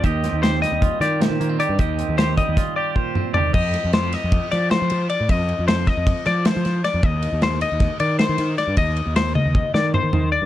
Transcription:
<<
  \new Staff \with { instrumentName = "Clean electric guitar" } { \time 9/8 \key f \mixolydian \tempo 4. = 103 ees''4 c''8 ees''4 d''8 c''4 d''8 | ees''4 c''8 ees''4 d''8 c''4 d''8 | ees''4 c''8 ees''4 d''8 c''4 d''8 | ees''4 c''8 ees''4 d''8 c''4 d''8 |
ees''4 c''8 ees''4 d''8 c''4 d''8 | ees''4 c''8 ees''4 d''8 c''4 d''8 | }
  \new Staff \with { instrumentName = "Clean electric guitar" } { \time 9/8 \key f \mixolydian << { g'8 c'8 g'4 f'8 g'4 bes16 c'16 g'8 | g'8 c'8 g'4 f'8 g'4 c'8 g'8~ | g'1~ g'8 | r1 r8 |
r1 r8 | r1 r8 | } \\ { ees4. g4. bes,4 ees8 | ees4. g4. bes,4 ees8 | r1 r8 | r1 r8 |
r1 r8 | r1 r8 | } >> }
  \new Staff \with { instrumentName = "Picked electric bass" } { \clef bass \time 9/8 \key f \mixolydian ees,8. ees,4 ees,8 r16 ees8. ees16 ees8 r16 g,16 | ees,8. ees,4 ees,16 r2 r8 | f,8. f,4 f,8 r16 f8. f16 f8 r16 a,16 | f,8. f,4 f,8 r16 f8. f16 f8 r16 f,16 |
ees,8. ees,4 ees,8 r16 ees8. ees16 ees8 r16 g,16 | ees,8. ees,4 ees,8 r16 ees8. ees16 ees8 r16 g,16 | }
  \new DrumStaff \with { instrumentName = "Drums" } \drummode { \time 9/8 <hh bd>8 <hh sn>8 <hh sn>8 <hh sn>8 <hh bd>8 <hh sn>8 <hh sn>8 hh8 hh8 | <hh bd>8 hh8 <hh sn>8 <hh bd>8 <hh bd sn>4 bd8 toml8 tomfh8 | <cymc bd>8 <cymr sn>8 <cymr sn>8 <cymr sn>8 <bd cymr>8 <cymr sn>8 <cymr sn>8 cymr8 cymr8 | <bd cymr>8 cymr8 <cymr sn>8 <bd cymr sn>8 <bd cymr>8 <cymr sn>8 <cymr sn>8 <cymr sn>8 <cymr sn>8 |
<bd cymr>8 cymr8 <cymr sn>8 cymr8 <bd cymr sn>8 cymr8 <cymr sn>8 <cymr sn>8 <cymr sn>8 | <bd cymr>8 cymr8 <cymr sn>8 tommh8 bd8 sn8 toml8 tomfh4 | }
>>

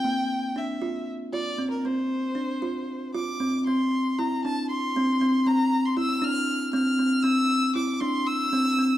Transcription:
<<
  \new Staff \with { instrumentName = "Violin" } { \time 7/8 \key c \mixolydian \tempo 4 = 117 g''4 e''4 r8 d''8. bes'16 | c''2~ c''8 d'''4 | c'''4 bes''8 a''8 c'''4. | bes''8. c'''16 e'''8 f'''4 f'''4 |
e'''4 d'''8 c'''8 e'''4. | }
  \new Staff \with { instrumentName = "Kalimba" } { \time 7/8 \key c \mixolydian bes4 d'8 f'4 f'8 c'8 | c'4 d'8 f'4 f'8 c'8 | c'4 e'8 d'4 c'8 c'8 | c'4 e'8 d'4 c'8 c'8 |
c'4 e'8 d'4 c'8 c'8 | }
>>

